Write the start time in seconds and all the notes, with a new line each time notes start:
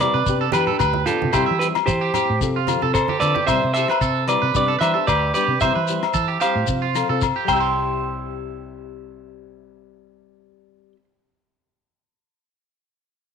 0.00 G3 C4 E4 G4 B4 D5, cross-stick, closed hi-hat, low agogo, shekere
0.14 C3 B4
0.26 C3 B3 D4 G4, kick, shekere
0.41 A4
0.52 E3 B3 D4 G4 B4, cross-stick, closed hi-hat, high conga, low agogo, shekere
0.56 G4
0.67 G4 A4, low conga
0.71 D4
0.79 D2 B4, kick, cross-stick, low agogo, shekere
0.94 high conga
1.06 B3 D4 F4 G4 A4, closed hi-hat, low conga, shekere
1.10 muted nylon-string guitar stroke
1.22 C3, high conga
1.33 C3 G3 C4 E4 G4 C5, kick, cross-stick, low agogo, shekere
1.37 G4
1.46 E5
1.51 E3
1.59 G3 C4 G4 B4, closed hi-hat, shekere
1.64 E4 G4
1.75 cross-stick, low agogo
1.86 E3 G4 C5, kick, high conga, shekere
2.01 G4
2.14 C4 E4 G4, closed hi-hat, low conga, low agogo, shekere
2.30 A2
2.41 C3 F3 C4 F4 A4, kick, shekere
2.56 F4
2.67 F3 C4 F4 A4, cross-stick, closed hi-hat, high conga, low agogo, shekere
2.82 C3 C4 F4 A4, low conga
2.94 A4 C5, muted clean electric guitar stroke, kick, cross-stick, low agogo, shekere
3.08 G4, high conga
3.20 D3 F3 C4 A4 B4 D5, closed hi-hat, low conga, shekere
3.24 F4 A4
3.35 G4, high conga
3.46 C3 G3 C4 C5 E5, kick, cross-stick, low agogo, shekere
3.51 E4 G4
3.64 C3
3.74 C4 E4 A4 C5 E5, closed hi-hat, shekere
3.78 G4
3.88 B4, cross-stick, low agogo
4.01 C3 A4, kick, shekere
4.28 G3 C4 E4 G4 B4 D5, cross-stick, closed hi-hat, low agogo, shekere
4.42 C3 B4
4.55 C3 G3 B3 D4 G4 B4 D5, kick, shekere
4.68 A4
4.79 E3 G3 B3 D4 B4 C5 E5, cross-stick, closed hi-hat, low agogo, shekere
4.83 G4
4.94 B3 D4 G4 A4
5.07 D2 G4 B4 D5, kick, cross-stick, low agogo, shekere
5.34 G3 B3 D4 G4 B4 D5, closed hi-hat, shekere
5.48 C3
5.61 C3 G3 C4 E4 G4 C5 E5, kick, cross-stick, low agogo, shekere
5.75 E3 B4
5.88 G3 C4 E4 G4, closed hi-hat, shekere
6.03 cross-stick, low agogo
6.14 E3 A4, kick, shekere
6.28 G4
6.40 G3 C4 E4 G4 C5 F5, closed hi-hat, low agogo, shekere
6.55 A2
6.67 C3 F3 C4 F4, muted nylon-string guitar stroke, kick, shekere
6.82 F4
6.95 F3 C4 F4 A4, cross-stick, closed hi-hat, low agogo, shekere
7.09 C3 C4 F4 A4
7.21 kick, cross-stick, low agogo, shekere
7.36 G4
7.45 C2 G3 C5 G5, kick, low agogo, shekere
7.49 C4 E4 E5, crash
7.55 G4 G5
7.60 C6